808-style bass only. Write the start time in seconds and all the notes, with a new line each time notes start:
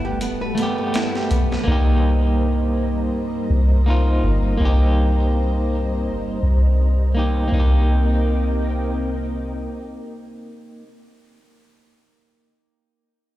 Already playing: G1
0.21 D1
1.31 B1
1.67 C2
3.50 C2
4.24 G1
4.60 C2
6.07 G1
6.43 C2
7.52 C2